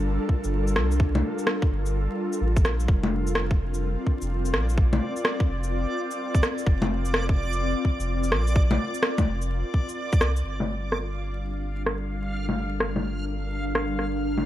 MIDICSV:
0, 0, Header, 1, 5, 480
1, 0, Start_track
1, 0, Key_signature, -2, "minor"
1, 0, Tempo, 472441
1, 1012, Time_signature, 4, 2, 24, 8
1, 14686, End_track
2, 0, Start_track
2, 0, Title_t, "Synth texture"
2, 0, Program_c, 0, 99
2, 2929, Note_on_c, 0, 74, 82
2, 10616, Note_on_c, 0, 77, 75
2, 10623, Note_off_c, 0, 74, 0
2, 14686, Note_off_c, 0, 77, 0
2, 14686, End_track
3, 0, Start_track
3, 0, Title_t, "Ambient pad"
3, 0, Program_c, 1, 92
3, 0, Note_on_c, 1, 55, 72
3, 0, Note_on_c, 1, 62, 86
3, 0, Note_on_c, 1, 65, 77
3, 0, Note_on_c, 1, 69, 90
3, 0, Note_on_c, 1, 70, 73
3, 2931, Note_off_c, 1, 55, 0
3, 2931, Note_off_c, 1, 69, 0
3, 2935, Note_on_c, 1, 60, 77
3, 4251, Note_off_c, 1, 62, 0
3, 10610, Note_off_c, 1, 65, 0
3, 10610, Note_off_c, 1, 70, 0
3, 10614, Note_on_c, 1, 55, 71
3, 10793, Note_on_c, 1, 62, 83
3, 10880, Note_on_c, 1, 65, 68
3, 11774, Note_on_c, 1, 69, 70
3, 11984, Note_on_c, 1, 70, 85
3, 12140, Note_off_c, 1, 60, 0
3, 14686, Note_off_c, 1, 55, 0
3, 14686, Note_off_c, 1, 62, 0
3, 14686, Note_off_c, 1, 65, 0
3, 14686, Note_off_c, 1, 69, 0
3, 14686, Note_off_c, 1, 70, 0
3, 14686, End_track
4, 0, Start_track
4, 0, Title_t, "Sub bass"
4, 0, Program_c, 2, 38
4, 0, Note_on_c, 2, 31, 81
4, 187, Note_off_c, 2, 31, 0
4, 453, Note_on_c, 2, 31, 80
4, 777, Note_on_c, 2, 36, 87
4, 792, Note_off_c, 2, 31, 0
4, 1244, Note_off_c, 2, 36, 0
4, 1735, Note_on_c, 2, 31, 85
4, 2109, Note_off_c, 2, 31, 0
4, 2451, Note_on_c, 2, 33, 94
4, 2689, Note_on_c, 2, 34, 81
4, 2704, Note_off_c, 2, 33, 0
4, 2917, Note_off_c, 2, 34, 0
4, 2929, Note_on_c, 2, 29, 100
4, 3640, Note_off_c, 2, 29, 0
4, 3651, Note_on_c, 2, 29, 81
4, 4027, Note_off_c, 2, 29, 0
4, 4286, Note_on_c, 2, 29, 76
4, 4607, Note_on_c, 2, 34, 89
4, 4623, Note_off_c, 2, 29, 0
4, 5079, Note_off_c, 2, 34, 0
4, 5570, Note_on_c, 2, 29, 81
4, 5946, Note_off_c, 2, 29, 0
4, 6771, Note_on_c, 2, 29, 99
4, 7481, Note_off_c, 2, 29, 0
4, 7489, Note_on_c, 2, 29, 85
4, 7866, Note_off_c, 2, 29, 0
4, 8123, Note_on_c, 2, 29, 79
4, 8451, Note_on_c, 2, 34, 89
4, 8467, Note_off_c, 2, 29, 0
4, 8921, Note_off_c, 2, 34, 0
4, 9412, Note_on_c, 2, 29, 85
4, 9787, Note_off_c, 2, 29, 0
4, 10373, Note_on_c, 2, 36, 93
4, 10599, Note_off_c, 2, 36, 0
4, 10612, Note_on_c, 2, 31, 84
4, 14686, Note_off_c, 2, 31, 0
4, 14686, End_track
5, 0, Start_track
5, 0, Title_t, "Drums"
5, 295, Note_on_c, 9, 36, 60
5, 396, Note_off_c, 9, 36, 0
5, 447, Note_on_c, 9, 82, 53
5, 549, Note_off_c, 9, 82, 0
5, 685, Note_on_c, 9, 82, 45
5, 771, Note_on_c, 9, 37, 99
5, 787, Note_off_c, 9, 82, 0
5, 873, Note_off_c, 9, 37, 0
5, 928, Note_on_c, 9, 82, 56
5, 1014, Note_on_c, 9, 36, 112
5, 1029, Note_off_c, 9, 82, 0
5, 1116, Note_off_c, 9, 36, 0
5, 1169, Note_on_c, 9, 61, 60
5, 1270, Note_off_c, 9, 61, 0
5, 1408, Note_on_c, 9, 82, 49
5, 1491, Note_on_c, 9, 37, 99
5, 1509, Note_off_c, 9, 82, 0
5, 1593, Note_off_c, 9, 37, 0
5, 1648, Note_on_c, 9, 36, 101
5, 1750, Note_off_c, 9, 36, 0
5, 1887, Note_on_c, 9, 82, 51
5, 1989, Note_off_c, 9, 82, 0
5, 2364, Note_on_c, 9, 82, 50
5, 2466, Note_off_c, 9, 82, 0
5, 2605, Note_on_c, 9, 82, 42
5, 2606, Note_on_c, 9, 36, 98
5, 2691, Note_off_c, 9, 82, 0
5, 2691, Note_on_c, 9, 37, 97
5, 2691, Note_on_c, 9, 82, 28
5, 2707, Note_off_c, 9, 36, 0
5, 2792, Note_off_c, 9, 37, 0
5, 2792, Note_off_c, 9, 82, 0
5, 2844, Note_on_c, 9, 82, 53
5, 2930, Note_on_c, 9, 36, 109
5, 2946, Note_off_c, 9, 82, 0
5, 3031, Note_off_c, 9, 36, 0
5, 3083, Note_on_c, 9, 61, 62
5, 3185, Note_off_c, 9, 61, 0
5, 3322, Note_on_c, 9, 82, 49
5, 3406, Note_on_c, 9, 37, 98
5, 3423, Note_off_c, 9, 82, 0
5, 3508, Note_off_c, 9, 37, 0
5, 3564, Note_on_c, 9, 36, 96
5, 3666, Note_off_c, 9, 36, 0
5, 3802, Note_on_c, 9, 82, 53
5, 3903, Note_off_c, 9, 82, 0
5, 4130, Note_on_c, 9, 36, 57
5, 4232, Note_off_c, 9, 36, 0
5, 4284, Note_on_c, 9, 82, 49
5, 4385, Note_off_c, 9, 82, 0
5, 4525, Note_on_c, 9, 82, 42
5, 4609, Note_on_c, 9, 37, 103
5, 4626, Note_off_c, 9, 82, 0
5, 4710, Note_off_c, 9, 37, 0
5, 4766, Note_on_c, 9, 82, 52
5, 4852, Note_on_c, 9, 36, 107
5, 4868, Note_off_c, 9, 82, 0
5, 4954, Note_off_c, 9, 36, 0
5, 5006, Note_on_c, 9, 61, 63
5, 5108, Note_off_c, 9, 61, 0
5, 5246, Note_on_c, 9, 82, 50
5, 5331, Note_on_c, 9, 37, 101
5, 5348, Note_off_c, 9, 82, 0
5, 5433, Note_off_c, 9, 37, 0
5, 5488, Note_on_c, 9, 36, 90
5, 5589, Note_off_c, 9, 36, 0
5, 5726, Note_on_c, 9, 82, 52
5, 5827, Note_off_c, 9, 82, 0
5, 6206, Note_on_c, 9, 82, 48
5, 6308, Note_off_c, 9, 82, 0
5, 6447, Note_on_c, 9, 36, 95
5, 6449, Note_on_c, 9, 82, 41
5, 6533, Note_off_c, 9, 82, 0
5, 6533, Note_on_c, 9, 37, 97
5, 6533, Note_on_c, 9, 82, 28
5, 6549, Note_off_c, 9, 36, 0
5, 6635, Note_off_c, 9, 37, 0
5, 6635, Note_off_c, 9, 82, 0
5, 6688, Note_on_c, 9, 82, 52
5, 6772, Note_on_c, 9, 36, 109
5, 6789, Note_off_c, 9, 82, 0
5, 6874, Note_off_c, 9, 36, 0
5, 6927, Note_on_c, 9, 61, 69
5, 7029, Note_off_c, 9, 61, 0
5, 7165, Note_on_c, 9, 82, 54
5, 7253, Note_on_c, 9, 37, 102
5, 7267, Note_off_c, 9, 82, 0
5, 7355, Note_off_c, 9, 37, 0
5, 7408, Note_on_c, 9, 36, 97
5, 7510, Note_off_c, 9, 36, 0
5, 7648, Note_on_c, 9, 82, 51
5, 7749, Note_off_c, 9, 82, 0
5, 7973, Note_on_c, 9, 36, 54
5, 8075, Note_off_c, 9, 36, 0
5, 8129, Note_on_c, 9, 82, 52
5, 8231, Note_off_c, 9, 82, 0
5, 8367, Note_on_c, 9, 82, 42
5, 8451, Note_on_c, 9, 37, 92
5, 8468, Note_off_c, 9, 82, 0
5, 8553, Note_off_c, 9, 37, 0
5, 8608, Note_on_c, 9, 82, 53
5, 8694, Note_on_c, 9, 36, 111
5, 8710, Note_off_c, 9, 82, 0
5, 8795, Note_off_c, 9, 36, 0
5, 8846, Note_on_c, 9, 61, 70
5, 8948, Note_off_c, 9, 61, 0
5, 9086, Note_on_c, 9, 82, 56
5, 9170, Note_on_c, 9, 37, 102
5, 9188, Note_off_c, 9, 82, 0
5, 9272, Note_off_c, 9, 37, 0
5, 9329, Note_on_c, 9, 36, 92
5, 9329, Note_on_c, 9, 61, 59
5, 9329, Note_on_c, 9, 82, 30
5, 9430, Note_off_c, 9, 61, 0
5, 9430, Note_off_c, 9, 82, 0
5, 9431, Note_off_c, 9, 36, 0
5, 9568, Note_on_c, 9, 82, 54
5, 9670, Note_off_c, 9, 82, 0
5, 9894, Note_on_c, 9, 36, 59
5, 9996, Note_off_c, 9, 36, 0
5, 10047, Note_on_c, 9, 82, 53
5, 10149, Note_off_c, 9, 82, 0
5, 10289, Note_on_c, 9, 36, 96
5, 10289, Note_on_c, 9, 82, 45
5, 10373, Note_off_c, 9, 82, 0
5, 10373, Note_on_c, 9, 37, 95
5, 10373, Note_on_c, 9, 82, 31
5, 10390, Note_off_c, 9, 36, 0
5, 10474, Note_off_c, 9, 37, 0
5, 10474, Note_off_c, 9, 82, 0
5, 10531, Note_on_c, 9, 82, 54
5, 10632, Note_off_c, 9, 82, 0
5, 10771, Note_on_c, 9, 61, 64
5, 10873, Note_off_c, 9, 61, 0
5, 11096, Note_on_c, 9, 37, 93
5, 11197, Note_off_c, 9, 37, 0
5, 12054, Note_on_c, 9, 37, 98
5, 12155, Note_off_c, 9, 37, 0
5, 12687, Note_on_c, 9, 61, 62
5, 12789, Note_off_c, 9, 61, 0
5, 13008, Note_on_c, 9, 37, 96
5, 13110, Note_off_c, 9, 37, 0
5, 13166, Note_on_c, 9, 61, 53
5, 13267, Note_off_c, 9, 61, 0
5, 13971, Note_on_c, 9, 37, 98
5, 14072, Note_off_c, 9, 37, 0
5, 14212, Note_on_c, 9, 37, 56
5, 14313, Note_off_c, 9, 37, 0
5, 14606, Note_on_c, 9, 61, 60
5, 14686, Note_off_c, 9, 61, 0
5, 14686, End_track
0, 0, End_of_file